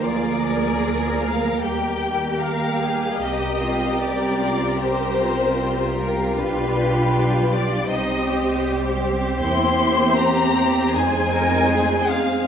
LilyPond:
<<
  \new Staff \with { instrumentName = "Violin section" } { \time 4/4 \key c \minor \tempo 4 = 77 d''4. f''8 g''4 f''4 | ees''4 d''4 c''4. bes'8 | b'4. d''8 ees''4 r4 | c'''4 bes''4 aes''4. f''8 | }
  \new Staff \with { instrumentName = "Cello section" } { \time 4/4 \key c \minor f'8 bes'4. g'4 bes'8 aes'8 | g'8 f'8 g'8 f'8 g'8 f'4.~ | f'2 ees'8 g'4. | e'8 e'8 g'8 g'8 aes'8 bes'8 aes'4 | }
  \new Staff \with { instrumentName = "Violin section" } { \time 4/4 \key c \minor << { bes'1 | bes'1 | g'2 c''2~ | c''1 | } \\ { aes'2 g'2~ | g'1 | f'2 g'2~ | g'2 ees'2 | } >> }
  \new Staff \with { instrumentName = "Viola section" } { \time 4/4 \key c \minor << { bes1 | c'1 | d'2 c'2~ | c'1 | } \\ { f2 g2~ | g1~ | g2 g2 | bes2 aes2 | } >> }
  \new Staff \with { instrumentName = "Double bass section" } { \clef bass \time 4/4 \key c \minor d,2 ees,2 | c,1 | b,,2 c,2 | e,2 f,2 | }
>>